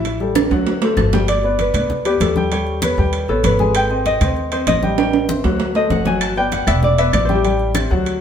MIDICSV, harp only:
0, 0, Header, 1, 2, 480
1, 0, Start_track
1, 0, Key_signature, 1, "major"
1, 0, Tempo, 308325
1, 75, Time_signature, 4, 2, 24, 8
1, 12778, End_track
2, 0, Start_track
2, 0, Title_t, "Harp"
2, 0, Program_c, 0, 46
2, 2002, Note_on_c, 0, 74, 80
2, 2488, Note_on_c, 0, 71, 64
2, 3201, Note_on_c, 0, 67, 73
2, 3450, Note_on_c, 0, 69, 72
2, 3931, Note_on_c, 0, 73, 87
2, 4024, Note_off_c, 0, 74, 0
2, 4401, Note_off_c, 0, 71, 0
2, 4407, Note_on_c, 0, 71, 69
2, 5116, Note_off_c, 0, 69, 0
2, 5122, Note_on_c, 0, 69, 84
2, 5358, Note_off_c, 0, 71, 0
2, 5364, Note_on_c, 0, 71, 77
2, 5850, Note_on_c, 0, 79, 95
2, 6325, Note_on_c, 0, 75, 80
2, 6865, Note_off_c, 0, 67, 0
2, 6907, Note_off_c, 0, 73, 0
2, 7046, Note_on_c, 0, 72, 66
2, 7140, Note_off_c, 0, 71, 0
2, 7273, Note_off_c, 0, 75, 0
2, 7279, Note_on_c, 0, 75, 82
2, 8268, Note_off_c, 0, 79, 0
2, 8541, Note_off_c, 0, 69, 0
2, 8963, Note_off_c, 0, 75, 0
2, 8969, Note_on_c, 0, 75, 83
2, 9206, Note_on_c, 0, 78, 81
2, 9440, Note_on_c, 0, 80, 94
2, 9689, Note_on_c, 0, 81, 99
2, 9783, Note_off_c, 0, 80, 0
2, 9922, Note_on_c, 0, 79, 96
2, 10016, Note_off_c, 0, 78, 0
2, 10128, Note_off_c, 0, 72, 0
2, 10169, Note_on_c, 0, 78, 75
2, 10263, Note_off_c, 0, 79, 0
2, 10394, Note_on_c, 0, 76, 87
2, 10487, Note_off_c, 0, 75, 0
2, 10648, Note_on_c, 0, 74, 76
2, 10871, Note_off_c, 0, 76, 0
2, 10877, Note_on_c, 0, 76, 97
2, 11115, Note_off_c, 0, 74, 0
2, 11122, Note_on_c, 0, 74, 82
2, 11288, Note_on_c, 0, 72, 74
2, 11441, Note_on_c, 0, 67, 66
2, 11534, Note_off_c, 0, 78, 0
2, 11945, Note_off_c, 0, 81, 0
2, 12778, Note_off_c, 0, 67, 0
2, 12778, Note_off_c, 0, 72, 0
2, 12778, Note_off_c, 0, 74, 0
2, 12778, Note_off_c, 0, 76, 0
2, 12778, End_track
0, 0, End_of_file